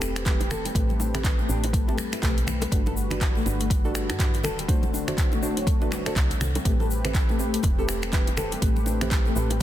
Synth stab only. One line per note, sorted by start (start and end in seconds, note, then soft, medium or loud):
0.00 0.24 A3 loud
0.00 0.24 C4 medium
0.00 0.24 G4 medium
0.00 0.24 A4 loud
0.26 0.41 A3 medium
0.26 0.41 C4 medium
0.26 0.41 G4 medium
0.26 0.41 B4 loud
0.75 0.90 A3 medium
0.75 0.90 C4 medium
0.75 0.90 G4 medium
0.75 0.90 B4 medium
1.14 1.47 A3 medium
1.14 1.47 C4 medium
1.14 1.47 G4 medium
1.14 1.47 B4 loud
1.49 1.64 A3 medium
1.49 1.64 C4 medium
1.49 1.64 G4 medium
1.49 1.64 B4 medium
1.88 2.20 A3 loud
1.88 2.20 C4 medium
1.88 2.20 G4 medium
1.88 2.20 A4 loud
2.23 2.38 A3 medium
2.23 2.38 C4 medium
2.23 2.38 G4 medium
2.23 2.38 B4 loud
2.72 2.87 G3 medium
2.72 2.87 D4 medium
2.72 2.87 F#4 medium
2.72 2.87 B4 medium
3.11 3.44 G3 loud
3.11 3.44 D4 medium
3.11 3.43 F#4 medium
3.11 3.43 B4 loud
3.46 3.61 G3 medium
3.46 3.61 D4 medium
3.46 3.61 F#4 medium
3.46 3.61 B4 medium
3.85 4.17 G3 loud
3.85 4.17 D4 medium
3.85 4.17 F#4 medium
3.85 4.17 A4 loud
4.19 4.35 G3 medium
4.19 4.35 D4 medium
4.19 4.35 F#4 medium
4.19 4.35 B4 loud
4.68 4.84 A3 medium
4.68 4.84 D4 medium
4.68 4.84 F#4 medium
4.68 4.84 C5 medium
5.08 5.40 A3 loud
5.08 5.40 D4 medium
5.08 5.40 F#4 medium
5.08 5.40 C5 loud
5.42 5.58 A3 medium
5.42 5.58 D4 medium
5.42 5.58 F#4 medium
5.42 5.58 C5 medium
5.81 6.03 A3 loud
5.81 6.03 D4 medium
5.81 6.03 F#4 medium
5.81 6.03 B4 loud
6.06 6.15 A3 medium
6.06 6.15 D4 medium
6.06 6.15 F#4 medium
6.06 6.15 C5 loud
6.65 6.81 A3 medium
6.65 6.81 C4 medium
6.65 6.81 G4 medium
6.65 6.81 B4 loud
7.05 7.37 A3 loud
7.05 7.37 C4 medium
7.05 7.37 G4 medium
7.05 7.37 B4 loud
7.39 7.55 A3 medium
7.39 7.55 C4 medium
7.39 7.55 G4 medium
7.39 7.55 B4 medium
7.78 8.11 A3 loud
7.78 8.11 C4 medium
7.78 8.11 G4 medium
7.78 8.11 A4 loud
8.13 8.28 A3 medium
8.13 8.28 C4 medium
8.13 8.28 G4 medium
8.13 8.28 B4 loud
8.62 8.78 A3 medium
8.62 8.78 C4 medium
8.62 8.78 G4 medium
8.62 8.78 B4 medium
9.01 9.34 A3 loud
9.01 9.34 C4 medium
9.01 9.34 G4 medium
9.01 9.34 B4 loud
9.36 9.51 A3 medium
9.36 9.51 C4 medium
9.36 9.51 G4 medium
9.36 9.51 B4 medium